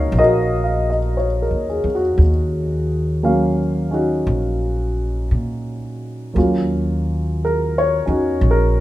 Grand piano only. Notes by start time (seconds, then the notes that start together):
Already playing: D#3 A#3 C#4 D#4 F4 F#4 A#4 C#5 F5
0.19 F#4 A#4 D#5
0.64 F5
0.90 D#5
1.17 C#5
1.42 A#4
1.69 G#4
1.95 F#4
3.23 F#3 A#3 C#4 F5
3.91 C#4 D#4 F#4
6.33 F#3 A#3 C#4
6.38 F4
7.45 A#4
7.78 C#5
8.06 C#4 D#4 F#4
8.51 A#4